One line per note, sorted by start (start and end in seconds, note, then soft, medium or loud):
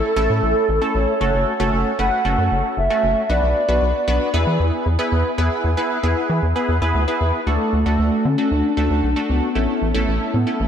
0.00 0.12 A3 medium
0.00 0.12 C#4 medium
0.00 0.12 E4 medium
0.00 0.12 A4 medium
0.00 0.91 A4 loud
0.16 0.28 A1 loud
0.16 0.70 A3 medium
0.16 0.70 C#4 medium
0.16 0.70 E4 medium
0.16 0.70 A4 loud
0.30 0.41 A2 loud
0.43 0.54 A1 loud
0.69 0.80 A1 loud
0.82 1.14 A3 medium
0.82 1.14 C#4 medium
0.82 1.14 E4 medium
0.82 1.14 A4 medium
0.95 1.06 A1 loud
0.95 1.69 C#5 loud
1.21 1.32 F#1 loud
1.21 1.53 A3 medium
1.21 1.53 C#4 medium
1.21 1.53 F#4 medium
1.21 1.53 A4 medium
1.34 1.45 F#1 loud
1.60 1.71 F#1 loud
1.60 1.92 A3 medium
1.60 1.92 C#4 medium
1.60 1.92 F#4 medium
1.60 1.92 A4 loud
1.73 1.84 F#1 loud
1.99 2.10 F#1 loud
1.99 2.20 A3 medium
1.99 2.20 C#4 medium
1.99 2.20 F#4 medium
1.99 2.20 B4 medium
1.99 2.48 F#5 loud
2.25 2.36 F#1 loud
2.25 2.79 A3 medium
2.25 2.79 C#4 medium
2.25 2.79 F#4 medium
2.25 2.79 A4 medium
2.38 2.49 F#2 loud
2.51 2.62 F#1 loud
2.77 2.88 F#1 loud
2.77 3.31 E5 loud
2.90 3.23 A3 medium
2.90 3.23 C#4 medium
2.90 3.23 F#4 medium
2.90 3.23 A4 medium
3.04 3.15 F#1 loud
3.29 3.41 B1 loud
3.29 3.62 B3 medium
3.29 3.62 D4 medium
3.29 3.62 F#4 medium
3.29 3.62 B4 medium
3.29 4.34 D5 loud
3.43 3.54 B1 loud
3.68 3.80 B1 loud
3.68 4.01 B3 medium
3.68 4.01 D4 medium
3.68 4.01 F#4 medium
3.68 4.01 B4 medium
3.82 3.93 B1 loud
4.08 4.19 B1 loud
4.08 4.29 B3 medium
4.08 4.29 D4 medium
4.08 4.29 F#4 medium
4.08 4.29 B4 loud
4.34 4.45 E2 loud
4.34 4.87 B3 medium
4.34 4.87 E4 medium
4.34 4.87 G#4 medium
4.34 4.87 B4 loud
4.47 4.58 E3 medium
4.60 4.71 E2 loud
4.86 4.97 E2 loud
4.99 5.31 B3 medium
4.99 5.31 E4 medium
4.99 5.31 G#4 medium
4.99 5.31 B4 loud
5.12 5.23 E2 loud
5.38 5.49 E2 loud
5.38 5.70 B3 medium
5.38 5.70 E4 medium
5.38 5.70 G#4 medium
5.38 5.70 B4 loud
5.64 5.75 E2 loud
5.77 5.99 B3 medium
5.77 5.99 E4 medium
5.77 5.99 G#4 medium
5.77 5.99 B4 loud
6.03 6.15 E2 medium
6.03 6.46 B3 medium
6.03 6.46 E4 medium
6.03 6.46 G#4 medium
6.03 6.46 B4 loud
6.30 6.41 E3 loud
6.43 6.54 E2 loud
6.56 6.77 B3 medium
6.56 6.77 E4 medium
6.56 6.77 G#4 medium
6.56 6.77 B4 loud
6.69 6.80 E2 loud
6.82 6.93 E2 medium
6.82 7.03 B3 medium
6.82 7.03 E4 medium
6.82 7.03 G#4 medium
6.82 7.03 B4 loud
6.95 7.06 D2 loud
7.08 7.40 B3 medium
7.08 7.40 E4 medium
7.08 7.40 G#4 medium
7.08 7.40 B4 loud
7.21 7.32 E2 medium
7.47 7.58 D2 loud
7.47 7.79 A3 medium
7.47 8.27 A3 loud
7.47 7.79 D4 medium
7.47 7.79 F#4 medium
7.47 7.79 A4 medium
7.73 7.84 D2 loud
7.86 7.97 D2 medium
7.86 8.29 A3 medium
7.86 8.29 D4 medium
7.86 8.29 F#4 medium
7.86 8.29 A4 medium
7.99 8.10 D2 loud
8.25 8.36 D3 loud
8.25 8.50 C#4 loud
8.38 8.70 A3 medium
8.38 8.70 D4 medium
8.38 8.70 F#4 medium
8.38 8.70 A4 medium
8.51 8.62 D2 loud
8.51 9.31 D4 loud
8.77 8.88 D2 loud
8.77 9.09 A3 medium
8.77 9.09 D4 medium
8.77 9.09 F#4 medium
8.77 9.09 A4 medium
8.90 9.02 D2 loud
9.03 9.15 B1 medium
9.16 9.49 A3 medium
9.16 9.48 D4 medium
9.16 9.49 F#4 medium
9.16 9.48 A4 medium
9.29 9.41 C#2 medium
9.29 10.08 B3 medium
9.55 9.67 A1 loud
9.55 9.88 A3 medium
9.55 9.88 C#4 medium
9.55 9.88 E4 medium
9.55 9.88 A4 medium
9.82 9.93 A1 loud
9.94 10.06 A1 medium
9.94 10.37 A3 medium
9.94 10.37 C#4 medium
9.94 10.37 E4 medium
9.94 10.37 A4 loud
10.08 10.19 A1 loud
10.34 10.45 A2 loud
10.34 10.61 B3 loud
10.47 10.68 A3 medium
10.47 10.68 C#4 medium
10.47 10.68 E4 medium
10.47 10.68 A4 medium
10.60 10.68 A1 loud
10.60 10.68 A3 loud